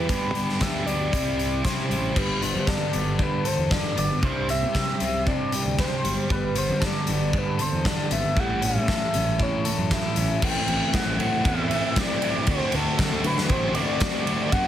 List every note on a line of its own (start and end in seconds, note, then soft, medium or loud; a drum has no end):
0.00 0.62 B4 medium
0.08 0.60 G2 medium
0.08 0.34 G2 medium
0.08 0.59 D3 medium
0.08 0.36 G3 medium
0.08 0.35 B3 medium
0.08 0.33 D4 medium
0.08 0.33 G4 medium
0.08 kick loud
0.08 closed hi-hat medium
0.34 0.59 G3 medium
0.34 0.60 G3 medium
0.34 0.61 B3 medium
0.34 0.62 D4 medium
0.34 0.61 G4 medium
0.34 closed hi-hat medium
0.49 snare soft
0.60 1.09 D2 medium
0.60 1.11 D3 medium
0.60 0.88 G3 medium
0.60 0.88 B3 medium
0.60 0.86 D4 medium
0.60 0.85 G4 medium
0.60 0.86 E5 medium
0.60 kick medium
0.60 snare medium
0.60 closed hi-hat medium
0.86 1.12 G3 soft
0.86 1.12 B3 soft
0.86 1.11 D4 medium
0.86 1.11 G4 medium
0.86 1.60 D5 medium
0.86 closed hi-hat medium
1.12 1.61 C2 medium
1.12 1.62 C3 medium
1.12 1.63 G3 medium
1.12 1.64 C4 medium
1.12 1.65 E4 medium
1.12 1.36 G4 medium
1.12 kick medium
1.12 closed hi-hat medium
1.37 1.62 G3 medium
1.37 1.63 C4 medium
1.37 1.63 E4 medium
1.37 1.64 G4 medium
1.37 closed hi-hat medium
1.63 2.14 C3 medium
1.63 1.91 C3 medium
1.63 1.91 G3 medium
1.63 1.89 C4 medium
1.63 1.88 E4 medium
1.63 1.88 G4 medium
1.63 2.19 C5 medium
1.63 kick loud
1.63 snare medium
1.63 closed hi-hat medium
1.89 2.14 A1 medium
1.89 2.15 G3 soft
1.89 2.15 C4 medium
1.89 2.14 E4 medium
1.89 2.14 G4 medium
1.89 closed hi-hat medium
2.15 2.55 G1 loud
2.15 2.40 G2 medium
2.15 2.40 D3 medium
2.15 2.40 G3 medium
2.15 2.44 B4 medium
2.15 kick loud
2.15 crash medium
2.42 2.65 G2 medium
2.42 2.66 D3 medium
2.42 2.91 B3 medium
2.42 2.69 C5 medium
2.42 closed hi-hat medium
2.54 2.79 G2 medium
2.67 2.91 G2 medium
2.67 2.91 D3 medium
2.67 3.43 A4 medium
2.67 3.19 D5 medium
2.67 kick loud
2.67 snare medium
2.92 3.18 G1 medium
2.92 3.17 G2 medium
2.92 3.17 D3 medium
2.92 3.95 B3 medium
2.92 closed hi-hat medium
3.19 3.42 G2 medium
3.19 3.44 G2 medium
3.19 3.43 D3 medium
3.19 3.70 D4 medium
3.19 3.48 B4 medium
3.19 kick medium
3.44 3.68 G2 medium
3.44 3.69 D3 medium
3.44 4.23 A4 medium
3.44 3.71 C5 medium
3.44 closed hi-hat medium
3.58 3.82 E2 medium
3.70 3.94 G2 medium
3.70 3.94 D3 medium
3.70 4.51 D4 medium
3.70 3.96 D5 medium
3.70 kick loud
3.70 snare loud
3.96 4.09 G1 medium
3.96 4.20 G2 medium
3.96 4.20 D3 medium
3.96 4.23 B3 medium
3.96 4.22 D5 medium
3.96 closed hi-hat medium
4.22 4.64 C2 medium
4.22 4.47 C3 medium
4.22 4.47 G3 medium
4.22 4.47 C4 medium
4.22 4.48 C5 medium
4.22 kick loud
4.48 4.72 C3 medium
4.48 4.72 G3 medium
4.48 4.99 C4 medium
4.48 5.23 E5 medium
4.48 closed hi-hat medium
4.63 4.86 C3 medium
4.73 4.98 C3 medium
4.73 4.98 G3 medium
4.73 5.52 G4 medium
4.73 kick loud
4.73 snare loud
5.00 5.25 C2 medium
5.00 5.24 C3 medium
5.00 5.24 G3 medium
5.00 6.04 C4 medium
5.00 closed hi-hat medium
5.26 5.50 C3 medium
5.26 5.50 G3 medium
5.26 5.78 D4 medium
5.26 5.75 D5 medium
5.26 kick loud
5.52 5.75 C3 medium
5.52 5.76 G3 medium
5.52 6.80 G4 medium
5.52 closed hi-hat medium
5.65 5.89 D2 medium
5.79 6.02 C3 medium
5.79 6.02 G3 medium
5.79 6.04 D4 medium
5.79 6.27 C5 medium
5.79 kick loud
5.79 snare loud
6.04 6.16 G1 medium
6.04 6.28 G2 medium
6.04 6.29 D3 medium
6.04 6.29 G3 medium
6.04 closed hi-hat medium
6.30 6.70 G1 loud
6.30 6.53 G2 medium
6.30 6.53 D3 medium
6.30 7.62 G3 medium
6.30 6.55 B4 loud
6.30 kick loud
6.55 6.79 G2 medium
6.55 6.79 D3 medium
6.55 7.05 B3 medium
6.55 6.86 C5 medium
6.55 closed hi-hat medium
6.69 6.93 G2 medium
6.80 7.05 G2 medium
6.80 7.05 D3 medium
6.80 7.58 A4 medium
6.80 kick loud
6.80 snare loud
6.85 7.39 D5 medium
7.06 7.32 G1 medium
7.06 7.31 G2 medium
7.06 7.31 D3 medium
7.06 8.09 B3 medium
7.06 closed hi-hat medium
7.33 7.57 G2 medium
7.33 7.57 D3 medium
7.33 7.84 D4 medium
7.33 kick loud
7.38 7.61 B4 loud
7.59 7.82 G2 medium
7.59 7.82 D3 medium
7.59 8.39 A4 medium
7.59 7.84 C5 medium
7.59 closed hi-hat medium
7.73 7.96 E2 medium
7.85 8.08 G2 medium
7.85 8.08 D3 medium
7.85 8.36 D4 medium
7.85 8.10 D5 loud
7.85 kick loud
7.85 snare loud
8.11 8.23 G#1 medium
8.11 8.34 G2 medium
8.11 8.34 D3 medium
8.11 8.36 B3 medium
8.11 8.41 E5 loud
8.11 closed hi-hat medium
8.36 8.77 A1 loud
8.36 8.61 A2 medium
8.36 8.61 E3 medium
8.36 9.65 G3 medium
8.36 8.61 A3 medium
8.36 8.67 F#5 loud
8.36 kick loud
8.62 8.86 A2 medium
8.62 8.86 E3 medium
8.62 9.13 C#4 medium
8.62 9.41 E5 loud
8.62 closed hi-hat medium
8.75 8.99 A2 medium
8.88 9.12 A2 medium
8.88 9.12 E3 medium
8.88 9.64 A4 medium
8.88 kick loud
8.88 snare medium
9.14 9.38 A1 medium
9.14 9.37 A2 medium
9.14 9.37 E3 medium
9.14 10.16 C#4 medium
9.14 closed hi-hat medium
9.39 9.63 A2 medium
9.39 9.63 E3 medium
9.39 9.90 E4 medium
9.39 9.89 C#5 loud
9.39 kick loud
9.65 9.88 A2 medium
9.65 9.89 E3 medium
9.65 10.42 A4 medium
9.65 closed hi-hat medium
9.78 10.02 F#2 medium
9.91 10.14 A2 medium
9.91 10.15 E3 medium
9.91 10.42 E4 medium
9.91 10.40 E5 medium
9.91 kick loud
9.91 snare loud
10.16 10.29 A1 medium
10.16 10.40 A2 medium
10.16 10.40 E3 medium
10.16 10.43 C#4 medium
10.16 closed hi-hat medium
10.42 10.54 A1 medium
10.42 10.66 A2 medium
10.42 10.67 E3 medium
10.42 10.68 A3 medium
10.42 10.69 C4 medium
10.42 10.68 E4 medium
10.42 10.91 G5 loud
10.42 kick loud
10.42 crash loud
10.66 10.79 A1 medium
10.66 10.91 A2 medium
10.66 10.91 E3 medium
10.66 10.92 A3 medium
10.66 10.93 C4 medium
10.66 10.92 E4 loud
10.66 ride medium
10.92 11.17 A2 medium
10.92 11.05 A2 medium
10.92 11.17 E3 medium
10.92 11.18 A3 medium
10.92 11.19 C4 loud
10.92 11.18 E4 medium
10.92 11.42 F#5 medium
10.92 kick loud
10.92 snare loud
10.92 ride medium
11.06 11.18 A1 medium
11.18 11.43 A2 medium
11.18 11.46 A2 loud
11.18 11.43 E3 medium
11.18 11.44 A3 medium
11.18 11.44 C4 medium
11.18 11.45 E4 medium
11.18 ride medium
11.44 11.69 E2 medium
11.44 11.69 A2 medium
11.44 11.69 E3 medium
11.44 11.70 A3 medium
11.44 11.70 C4 medium
11.44 11.71 E4 medium
11.44 12.00 E5 loud
11.44 kick loud
11.44 ride medium
11.70 11.95 A2 medium
11.70 11.96 E3 medium
11.70 11.96 A3 medium
11.70 11.96 C4 medium
11.70 11.96 E4 medium
11.70 ride medium
11.96 12.21 A2 medium
11.96 12.21 E3 medium
11.96 12.21 A3 medium
11.96 12.22 C4 medium
11.96 12.22 E4 loud
11.96 12.52 D5 medium
11.96 kick loud
11.96 snare loud
11.96 ride loud
12.22 12.46 A2 medium
12.22 12.46 E3 medium
12.22 12.46 A3 medium
12.22 12.47 C4 medium
12.22 12.47 E4 medium
12.22 ride medium
12.47 12.59 D2 medium
12.47 12.72 D3 medium
12.47 12.72 A3 medium
12.47 12.74 C4 loud
12.47 12.73 D4 loud
12.47 12.73 F#4 medium
12.47 12.76 C5 loud
12.47 kick loud
12.47 ride loud
12.72 12.85 D2 medium
12.72 12.97 D3 medium
12.72 12.97 A3 medium
12.72 12.98 C4 medium
12.72 12.98 D4 medium
12.72 12.98 F#4 medium
12.72 13.25 A4 loud
12.72 ride medium
12.98 13.23 D3 medium
12.98 13.11 D3 medium
12.98 13.23 A3 medium
12.98 13.24 C4 medium
12.98 13.24 D4 loud
12.98 13.24 F#4 loud
12.98 kick loud
12.98 snare loud
12.98 ride loud
13.12 13.23 D2 medium
13.24 13.51 D3 loud
13.24 13.48 D3 medium
13.24 13.49 A3 medium
13.24 13.50 C4 medium
13.24 13.49 D4 medium
13.24 13.50 F#4 medium
13.24 13.53 B4 medium
13.24 ride medium
13.38 snare medium
13.49 13.74 A1 medium
13.49 13.74 D3 medium
13.49 13.74 A3 loud
13.49 13.75 C4 medium
13.49 13.75 D4 medium
13.49 13.75 F#4 medium
13.49 13.75 C5 loud
13.49 kick loud
13.49 ride medium
13.75 13.99 D3 medium
13.75 14.00 A3 medium
13.75 14.00 C4 medium
13.75 14.00 D4 loud
13.75 14.00 F#4 medium
13.75 13.99 D5 medium
13.75 ride medium
14.00 14.25 D3 medium
14.00 14.25 A3 loud
14.00 14.25 C4 loud
14.00 14.26 D4 medium
14.00 14.26 F#4 loud
14.00 14.53 D5 loud
14.00 kick loud
14.00 snare loud
14.00 ride loud
14.26 14.50 D3 medium
14.26 14.51 A3 medium
14.26 14.50 C4 medium
14.26 14.51 D4 medium
14.26 14.51 F#4 medium
14.26 ride medium
14.51 14.64 F#2 medium
14.51 14.68 F#3 medium
14.51 14.68 A#3 medium
14.51 14.68 C#4 medium
14.51 14.68 F#4 loud
14.51 14.68 F#5 loud
14.51 kick loud
14.51 ride loud